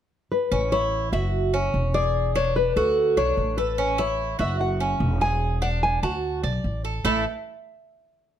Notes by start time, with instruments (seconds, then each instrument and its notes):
0.32 nylon-string guitar B4
0.52 upright bass A1, cuban tres C#4
0.72 cuban tres E4, nylon-string guitar C#5
1.12 upright bass F#1, cuban tres F#4, nylon-string guitar E5
1.54 cuban tres C#4
1.74 upright bass E1
1.94 cuban tres G#4, nylon-string guitar D5
2.35 cuban tres D4, nylon-string guitar C#5
2.56 nylon-string guitar B4
2.76 upright bass D2, cuban tres F#4, nylon-string guitar A4
3.17 upright bass B1, cuban tres D4, nylon-string guitar C#5
3.37 upright bass A1
3.57 cuban tres A4, nylon-string guitar B4
3.78 cuban tres C#4
3.98 cuban tres E4, nylon-string guitar C#5
4.39 upright bass F#1, cuban tres F#4, nylon-string guitar E5
4.61 nylon-string guitar F#5
4.80 cuban tres C#4
5.00 upright bass E1
5.21 cuban tres G#4, nylon-string guitar G#5
5.62 cuban tres D4, nylon-string guitar F#5
5.83 nylon-string guitar G#5
6.03 upright bass D2, cuban tres F#4, nylon-string guitar A5
6.43 upright bass B1, cuban tres D5
6.64 upright bass A1
6.85 cuban tres A4
7.05 upright bass A1, cuban tres A3 E4 A4, nylon-string guitar E5